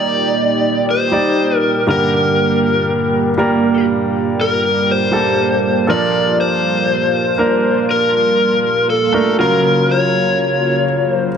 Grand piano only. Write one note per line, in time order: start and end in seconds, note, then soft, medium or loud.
0.00 1.04 G3 soft
0.00 1.04 D#4 soft
0.00 1.05 D5 soft
1.12 1.83 G3 soft
1.12 1.84 D#4 soft
1.12 1.84 D5 medium
1.87 3.34 G2 soft
1.87 3.34 D3 soft
1.87 3.30 G3 soft
1.87 3.30 A#3 soft
1.87 3.31 A#4 medium
3.38 5.04 G3 medium
3.38 5.04 A#3 medium
3.38 5.05 A#4 medium
5.12 5.83 G3 soft
5.12 5.84 A#3 soft
5.12 5.84 A4 medium
5.87 7.34 A#2 soft
5.87 7.34 F3 soft
5.87 7.30 D4 soft
5.87 7.30 A4 medium
5.87 7.31 A#4 medium
7.38 9.04 A#3 soft
7.38 9.05 D4 soft
7.38 9.05 A#4 medium
9.13 9.38 A3 soft
9.13 9.38 D4 soft
9.13 9.38 A#4 medium
9.38 10.84 C#3 medium
9.38 11.28 F#3 medium
9.38 11.29 F4 medium
9.38 11.29 A#4 medium